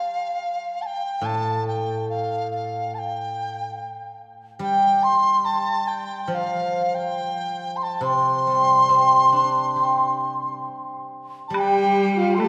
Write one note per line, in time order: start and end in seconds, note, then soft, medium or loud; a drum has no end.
0.00 0.37 G3 soft
0.00 0.83 F5 medium
0.82 0.87 A5 medium
0.86 1.27 G5 medium
1.21 3.76 A2 medium
1.25 1.67 A5 medium
1.68 2.06 G5 medium
2.09 2.48 F5 medium
2.51 2.96 F5 medium
2.94 3.00 A5 medium
2.99 4.20 G5 medium
4.59 7.14 G3 medium
4.59 5.05 G5 medium
5.03 5.46 C6 medium
5.45 5.89 A5 medium
5.87 6.30 G5 medium
6.28 8.88 F3 medium
6.28 6.36 G5 medium
6.35 6.96 F5 medium
6.95 7.78 G5 medium
7.76 7.84 C6 medium
7.83 8.05 A5 medium
8.01 10.64 C3 medium
8.01 10.66 C6 medium
8.47 10.21 G3 soft
8.89 10.65 C4 soft
9.32 11.11 D4 soft
9.76 11.54 G4 soft
11.48 12.48 G3 medium
11.48 11.55 A5 medium
11.53 12.41 G3 medium
11.53 12.14 G4 medium
11.53 11.61 A5 medium
11.53 high woodblock medium
11.60 12.21 G5 medium
12.16 12.39 F4 medium
12.16 12.36 F5 medium
12.35 12.46 A4 medium
12.35 12.41 C6 medium
12.39 12.48 A3 medium
12.39 12.48 A5 medium
12.39 high woodblock soft
12.45 12.48 G4 medium